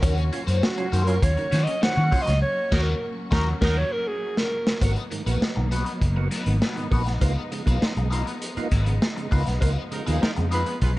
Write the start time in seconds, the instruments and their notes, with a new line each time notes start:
Already playing: string section F#3 A#3 C#4 F#4
0.02 fingered electric bass D#2, tonewheel organ D#3, overdriven electric guitar C#4 F#4 A#4, kick, closed hi-hat
0.17 muted overdriven electric guitar stroke, closed hi-hat
0.33 tonewheel organ C#4 F4, muted overdriven electric guitar stroke, closed hi-hat
0.47 fingered electric bass F#2, overdriven electric guitar C#4 F#4 C5, closed hi-hat
0.63 alto saxophone F#4, muted overdriven electric guitar stroke, snare
0.77 tonewheel organ F#3 C#4 F4, muted overdriven electric guitar stroke, closed hi-hat
0.92 fingered electric bass F#2, tonewheel organ D#3, overdriven electric guitar C#4 F#4 C5, closed hi-hat
1.04 tonewheel organ F#3 C#4 F4, alto saxophone A#4, closed hi-hat
1.08 muted overdriven electric guitar stroke
1.22 fingered electric bass D#2, tonewheel organ C#4 F4, alto saxophone C#5, kick, closed hi-hat
1.37 tonewheel organ D#3, muted overdriven electric guitar stroke, closed hi-hat
1.52 fingered electric bass D#3, overdriven electric guitar C#4 F#4 C5, tonewheel organ C#4 F4, snare, closed hi-hat
1.64 alto saxophone D#5, muted overdriven electric guitar stroke, closed hi-hat
1.81 tonewheel organ D#3, overdriven electric guitar C#4 F#4 C5, alto saxophone F#5, snare
1.96 fingered electric bass D#3, muted overdriven electric guitar stroke
2.12 tonewheel organ F#3 C#4 F4, overdriven electric guitar C#4 F#4 C5, kick, open hi-hat
2.22 alto saxophone D#5
2.26 fingered electric bass C#2, tonewheel organ C#4 F4, muted overdriven electric guitar stroke, snare, closed hi-hat
2.42 alto saxophone C#5
2.72 fingered electric bass D#2, overdriven electric guitar C#4 F#4, horn section D#4 F#4 A#4, kick, snare, crash
2.82 alto saxophone A#4
3.31 fingered electric bass D#2, overdriven electric guitar C#4 F#4 A#4, horn section D#4 F#4 A#4, kick, snare
3.61 fingered electric bass D#2, overdriven electric guitar C#4 F#4 A#4, horn section D#4 F#4 A#4, alto saxophone A#4, kick, snare, crash
3.77 alto saxophone C#5
3.92 alto saxophone A#4
4.07 alto saxophone G#4
4.37 alto saxophone A#4, snare
4.67 snare
4.81 fingered electric bass G#1, string section F#3 A#3 B3 D#4, tonewheel organ A#3 B3 F#4, overdriven electric guitar B3 F#4 A#4, kick, closed hi-hat
4.96 muted overdriven electric guitar stroke, closed hi-hat
5.11 tonewheel organ G#2 D#3, muted overdriven electric guitar stroke, closed hi-hat
5.26 fingered electric bass A#1, tonewheel organ A#3 B3 F#4, overdriven electric guitar B3 F#4 B4, closed hi-hat
5.41 tonewheel organ B3 F#4, muted overdriven electric guitar stroke, muted fingered electric bass stroke, snare
5.56 fingered electric bass B1, tonewheel organ G#2 D#3, muted overdriven electric guitar stroke
5.71 overdriven electric guitar B3 F#4 B4, tonewheel organ B3 F#4, closed hi-hat
5.86 muted overdriven electric guitar stroke, closed hi-hat
6.01 fingered electric bass F#1, kick, closed hi-hat
6.16 tonewheel organ A#3 B3 F#4, muted overdriven electric guitar stroke
6.31 overdriven electric guitar B3 F#4 B4, snare, closed hi-hat
6.46 fingered electric bass G#1, tonewheel organ G#2 D#3, muted overdriven electric guitar stroke, closed hi-hat
6.62 tonewheel organ B3 F#4, overdriven electric guitar B3 F#4 B4, snare
6.76 tonewheel organ G#2 D#3, muted overdriven electric guitar stroke, closed hi-hat
6.91 fingered electric bass A#1, tonewheel organ A#3 B3 F#4, overdriven electric guitar B3 F#4 B4, kick, open hi-hat
7.07 muted overdriven electric guitar stroke, snare, closed hi-hat
7.21 fingered electric bass C#2, string section F3 G#3, tonewheel organ A#3 B3 D#4 F4, overdriven electric guitar B3 F4 B4, kick, closed hi-hat
7.36 muted overdriven electric guitar stroke
7.51 tonewheel organ C#3 G#3, muted overdriven electric guitar stroke, closed hi-hat
7.66 fingered electric bass B1, tonewheel organ A#3 B3 D#4 F4, overdriven electric guitar B3 F4 B4, kick, closed hi-hat
7.81 tonewheel organ D#4 F4, muted overdriven electric guitar stroke, snare
7.97 fingered electric bass B1, tonewheel organ C#3 G#3, muted overdriven electric guitar stroke, closed hi-hat
8.10 overdriven electric guitar B3 F4 A#4, tonewheel organ D#4 F4, closed hi-hat
8.26 muted overdriven electric guitar stroke, closed hi-hat
8.42 closed hi-hat
8.57 tonewheel organ A#3 B3 D#4 F4, muted fingered electric bass stroke, muted overdriven electric guitar stroke, closed hi-hat
8.71 fingered electric bass G#1, overdriven electric guitar B3 F4 B4, kick, snare, closed hi-hat
8.86 tonewheel organ C#3 G#3, muted overdriven electric guitar stroke, closed hi-hat
9.02 tonewheel organ D#4 F4, snare
9.16 tonewheel organ C#3 G#3, muted overdriven electric guitar stroke, closed hi-hat
9.31 fingered electric bass C#2, tonewheel organ A#3 B3 D#4 F4, overdriven electric guitar B3 F4 B4, kick, open hi-hat
9.46 fingered electric bass B1, muted overdriven electric guitar stroke, snare, closed hi-hat
9.61 fingered electric bass C#2, tonewheel organ A#3 B3 D#4 F4, overdriven electric guitar B3 F4 A#4, kick, closed hi-hat
9.77 muted overdriven electric guitar stroke
9.91 tonewheel organ C#3 G#3, horn section D#4 F4 A#4, muted overdriven electric guitar stroke, closed hi-hat
10.06 fingered electric bass D#2, tonewheel organ A#3 B3 D#4 F4, overdriven electric guitar B3 F4 B4, horn section D#4 F4 G#4, closed hi-hat
10.21 tonewheel organ D#4 F4, horn section D#4 F4 A#4, muted overdriven electric guitar stroke, muted fingered electric bass stroke, snare
10.36 fingered electric bass F2, tonewheel organ C#3 G#3, muted overdriven electric guitar stroke, closed hi-hat
10.51 overdriven electric guitar B3 F4 B4, tonewheel organ D#4 F4, horn section F4 G#4 B4, closed hi-hat
10.66 muted overdriven electric guitar stroke, closed hi-hat
10.82 fingered electric bass B1, string section C#4, horn section F4 G#4 B4, kick, closed hi-hat